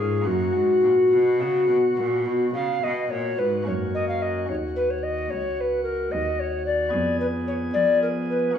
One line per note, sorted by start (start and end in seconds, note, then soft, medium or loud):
0.00 0.24 G#2 medium
0.00 0.25 G#2 medium
0.00 0.21 C#4 soft
0.00 0.23 F4 soft
0.00 0.28 G#4 medium
0.22 0.52 A#3 soft
0.22 0.53 C#4 soft
0.22 3.62 F#4 soft
0.26 0.54 F#2 medium
0.26 0.52 F#2 soft
0.26 2.54 F#4 medium
0.54 0.83 G#2 medium
0.54 0.81 G#2 soft
0.83 0.91 A#2 medium
0.83 1.10 A#2 soft
1.12 1.42 B2 medium
1.12 1.38 B2 medium
1.40 1.68 C#3 medium
1.40 1.67 C#3 soft
1.69 1.77 B2 medium
1.69 1.95 B2 soft
1.97 2.27 A#2 medium
1.97 2.23 A#2 soft
2.26 2.53 B2 medium
2.26 2.52 B2 soft
2.54 2.82 C#3 medium
2.54 2.80 C#3 soft
2.54 2.85 F5 medium
2.83 3.10 B2 medium
2.83 3.08 B2 soft
2.83 3.12 D#5 medium
3.10 3.39 A#2 medium
3.10 3.36 A#2 soft
3.10 3.40 C#5 medium
3.39 3.64 G#2 soft
3.39 3.67 G#2 medium
3.39 3.66 B4 medium
3.63 4.45 F#2 medium
3.63 4.45 A#3 soft
3.63 4.46 C#4 soft
3.63 6.89 F#4 soft
3.63 3.73 C#5 medium
3.68 4.46 F#2 soft
3.94 4.08 D#5 medium
4.08 4.24 F5 medium
4.22 4.49 D#5 medium
4.49 5.27 D#2 medium
4.49 5.27 D#2 soft
4.49 4.56 C#5 medium
4.76 4.92 B4 medium
4.90 5.04 C#5 medium
5.03 5.32 D#5 medium
5.30 6.08 C#2 soft
5.30 6.09 C#2 medium
5.30 5.57 C#5 medium
5.57 5.83 B4 medium
5.57 5.61 C#5 medium
5.83 6.13 A#4 medium
6.11 6.89 D#2 soft
6.11 6.90 D#2 medium
6.11 6.41 D#5 medium
6.40 6.65 C#5 medium
6.66 7.19 D5 medium
6.89 8.50 B3 soft
6.89 8.51 G#4 soft
6.93 7.70 F2 soft
6.93 7.70 F2 medium
7.20 7.26 B4 medium
7.47 7.53 C#5 medium
7.73 8.53 F3 medium
7.73 8.53 F3 soft
7.73 8.01 D5 medium
8.02 8.08 A#4 medium
8.30 8.56 B4 medium
8.52 8.59 A#3 soft
8.52 8.59 C#4 soft
8.52 8.59 F#4 soft